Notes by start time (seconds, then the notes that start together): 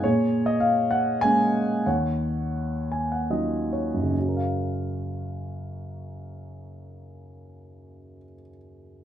0.04 A#2 G#4 C#5
0.46 D#5
0.60 F5
0.91 F#5
1.21 G#3 A#3 C#4 G#5
1.86 D#2 C#5 F#5
2.92 G#5
3.12 F#5
3.30 F#3 C#4 D#4 F4 D#5
3.73 C#5
3.94 F#2
4.03 C#3
4.11 C#4
4.20 F#4
4.29 A#4
4.36 F5